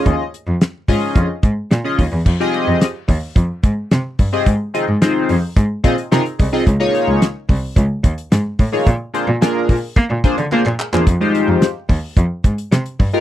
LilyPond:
<<
  \new Staff \with { instrumentName = "Analog polysynth" } { \time 4/4 \key f \minor \tempo 4 = 109 <des' f' aes' ees''>16 r4 r16 <des' f' aes' ees''>8. r4 <des' f' aes' ees''>16 r8 | r16 <c' f' g' aes' ees''>8. r2 r8. <c' f' g' aes' ees''>16 | r8 <c' ees' f' aes' ees''>16 r16 <c' ees' f' aes' c''>8 r4 <c' ees' f' aes' ees''>16 r16 <c' ees' f' aes' bes'>16 r16 <aes' ees''>16 <c' ees' f' aes' ees''>16 | r16 <bes ees' f' aes' des''>8. r2 r8. <bes ees' f' aes' des''>16 |
r8 <bes d' f' aes' c''>16 r16 <bes d' f' aes' bes'>8 r4 <bes d' f' aes' c''>16 r16 <bes d' f' aes' c''>16 r16 <aes' bes'>16 <bes d' f' aes' c''>16 | r16 <aes ees' f' g' c''>8. r2 r8. <aes ees' f' g' bes'>16 | }
  \new Staff \with { instrumentName = "Cello" } { \clef bass \time 4/4 \key f \minor ees,8. f,8 r16 aes,8 f,8 aes,8 bes,16 r16 ees,16 e,16 | f,8 r16 f,16 r8 ees,8 f,8 aes,8 c8 g,8 | aes,8 r16 aes,16 r8 f,8 aes,8 bes,8 c8 c,8 | des,8 r16 des,16 r8 c,8 des,8 ees,8 aes,8 a,8 |
bes,8 r16 bes,16 r8 bes,8 bes16 bes,16 r16 d16 bes16 bes,16 r16 e,16 | f,8 r16 f,16 r8 ees,8 f,8 aes,8 c8 g,8 | }
  \new DrumStaff \with { instrumentName = "Drums" } \drummode { \time 4/4 <hh bd>8 hh8 <hh sn>8 <hho bd>8 <hh bd>8 <hh bd>8 <hh sn>8 <hho bd>8 | <cymc bd>8 hh8 <hh sn>8 <hho bd>8 <hh bd>8 <hh bd>8 <hh sn>8 <hho bd>8 | <hh bd>8 hh8 <hh sn>8 hho8 <hh bd>8 <hh bd>16 hh16 <hh sn>16 hh16 <hho bd>8 | <hh bd>8 hh8 <hh sn>8 <hho bd>8 <hh bd>8 <hh bd>16 hh16 <hh sn>8 <hho bd>8 |
<hh bd>8 hh8 <hh sn>8 <hho bd>8 <hh bd>8 <hh bd>16 hh16 hc16 hc16 hc16 hc16 | <hh bd>8 hh8 <hh sn>8 <hho bd>8 <hh bd>8 <hh bd>16 hh16 <hh sn>16 hh16 <hho bd>8 | }
>>